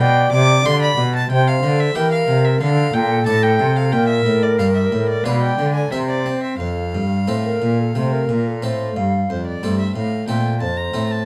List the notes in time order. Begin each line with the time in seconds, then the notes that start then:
0.00 B2 D5 G5
0.32 C3 D6
0.65 D3 G4 F5 C6
0.82 B5
0.98 B2
1.15 A5
1.30 C3 C5 G5
1.47 F5
1.63 D3
1.80 E5
1.95 E3 G4 A#4 E5 G5
2.12 F5
2.28 C3
2.44 E5
2.60 D3 A4 F5
2.93 A#2 G5
3.26 A2 D4 D5 A5
3.43 G5
3.59 C3
3.76 F5
3.92 A#2 A#4 G5
4.08 E5
4.26 A2
4.43 D5
4.58 G2 D4 D5 F5
4.75 E5
4.92 A2
5.09 D5
5.24 B2 G#3 D4 B4 D5 F5
5.41 G5
5.58 D3
5.74 G#5
5.91 C3 C4 A#4 C5 E5
6.08 D5
6.25 C4
6.43 E5
6.59 F2 A4 F5
6.93 G2
7.27 A2 A3 C4 A4 C5
7.45 A#4
7.62 A#2
7.79 A4
7.95 C3 A3 C5
8.13 A#4
8.29 A#2
8.47 A4
8.62 A2 A3 C4 A4 C5
8.96 G2 F5
9.30 F2 C5
9.46 D5
9.63 G2 A3 C4 A4
9.80 E5
9.96 A2 F5
10.28 A#2 A3 C4 A4 G5
10.61 F2 C5 A5
10.77 A#5
10.94 A2 A3 C4 A4
11.11 A5